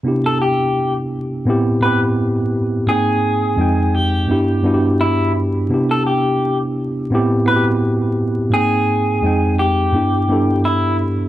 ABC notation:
X:1
M:4/4
L:1/16
Q:"Swing 16ths" 1/4=85
K:C
V:1 name="Clean electric guitar"
z A G3 z4 z B z4 z | _A6 G6 E2 z2 | z A G3 z4 z B z4 z | _A6 G6 E2 z2 |]
V:2 name="Tine electric piano"
[C,B,DEG]6 z2 [A,,B,CEG]2 [A,,B,CEG]4 z2 | [_A,,_B,C_Eg]4 [F,,_A,CEg]4 [G,,=B,D=EG]2 [G,,B,DE^FG]4 z2 | [C,B,DEG]6 z2 [A,,B,CEG]2 [A,,B,CE^FG]4 z2 | [_A,,_B,C_Eg]4 [F,,_A,CEg]4 [G,,=B,D=EG]2 [G,,B,DE=A]4 z2 |]